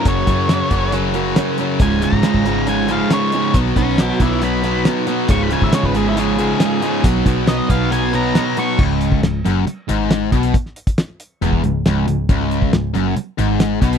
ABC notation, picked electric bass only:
X:1
M:4/4
L:1/16
Q:1/4=137
K:Dbmix
V:1 name="Picked electric bass" clef=bass
G,,,2 G,,4 G,,,8 z2 | D,,,3 A,,, z A,,,8 z3 | C,,2 C,,4 C,,8 z2 | D,,,3 A,,, z A,,,8 z3 |
C,,2 C,,4 C,,8 z2 | D,,,4 D,,,2 G,,,2 z2 A,,,4 C,,2 | z8 _F,,,2 D,,,2 D,,,2 D,,,2 | D,,,4 D,,,2 G,,,2 z2 A,,,4 C,,2 |]